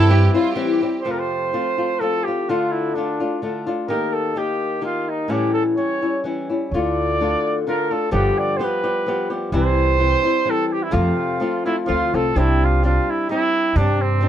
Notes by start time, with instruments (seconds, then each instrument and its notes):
Already playing: upright bass G2, nylon-string guitar C3 C4, trumpet E4
0.09 nylon-string guitar E3 G3 C4 E4, violin section G4
0.34 nylon-string guitar G3 C4 E4, violin section F4
0.54 nylon-string guitar E3 G3 C4 E4, violin section G4
0.81 nylon-string guitar G3 C4 E4
1.01 nylon-string guitar F2 C3, trumpet C5
1.06 nylon-string guitar F3 A3 C4 F4
1.11 trumpet A#4
1.19 trumpet C5
1.53 nylon-string guitar F3 A3 C4 F4
1.78 nylon-string guitar F3 A3 C4 F4
2.00 nylon-string guitar F3 A3 C4 F4, trumpet A4
2.24 nylon-string guitar A3 F4, trumpet G4
2.28 nylon-string guitar F3 C4
2.49 nylon-string guitar D3 A3 D4 F4, trumpet F4
2.72 trumpet E4
2.94 nylon-string guitar D3 A3 D4 F4, trumpet D4
3.20 nylon-string guitar A3 D4 F4
3.42 nylon-string guitar D3 A3 D4 F4
3.67 nylon-string guitar A3 D4 F4
3.88 nylon-string guitar D#3 A#3 D#4 G4, trumpet A#4
4.13 trumpet A4
4.36 nylon-string guitar D#3 A#3 D#4 G4, trumpet G4
4.81 nylon-string guitar D#3 A#3 D#4 G4, trumpet F4
5.09 trumpet D#4
5.28 nylon-string guitar A2 E3 G3 C#4 E4, trumpet G4
5.53 trumpet A4
5.77 nylon-string guitar E3 G3 C#4 E4, trumpet C#5
6.02 nylon-string guitar G3 C#4 E4
6.24 nylon-string guitar E3 G3 C#4 E4
6.50 nylon-string guitar G3 C#4 E4
6.71 upright bass D2, nylon-string guitar D3 A3 D4 F4, trumpet D5
7.21 nylon-string guitar D3 A3 D4 F4
7.67 nylon-string guitar D3 A3 D4 F4, trumpet A#4
7.91 nylon-string guitar A3 D4 F4, trumpet A4
8.11 upright bass G1, nylon-string guitar G2 D3 F3 G3 B3 G4, trumpet G4
8.38 trumpet D5
8.57 nylon-string guitar F3 G3 B3, trumpet C5
8.61 nylon-string guitar G4, trumpet B4
8.84 nylon-string guitar F3 G3 B3 G4
9.06 nylon-string guitar F3 G3 B3 G4
9.30 nylon-string guitar F3 G3 B3 G4
9.52 upright bass C2, nylon-string guitar C3 E3 G3 C4 E4, trumpet C5
9.98 nylon-string guitar E3 G3 C4 E4
10.24 nylon-string guitar G3 C4 E4
10.45 nylon-string guitar E3 G3 C4 E4
10.50 trumpet A4
10.67 trumpet A4
10.72 trumpet G4
10.83 trumpet E4
10.91 nylon-string guitar F2 C3 F3 A3 C4 F4, upright bass F2, trumpet F4
11.40 nylon-string guitar F3 A3 C4 F4
11.66 nylon-string guitar F3 A3 C4 F4, trumpet E4
11.86 upright bass D2, nylon-string guitar F3 A3 C4 F4, trumpet F4
12.14 upright bass C2, nylon-string guitar F3 A3 C4 F4, trumpet A4
12.36 upright bass C2, nylon-string guitar C3 G3 C4 D4 G4, trumpet E4
12.65 trumpet F4
12.83 nylon-string guitar G3 C4 D4 G4, trumpet F4
13.10 trumpet E4
13.29 nylon-string guitar G3 C4 D4 G4, trumpet E4
13.76 upright bass G2, nylon-string guitar C3 G3 C4 D4 G4, trumpet D4
14.01 trumpet C4
14.21 nylon-string guitar G3 C4 D4 G4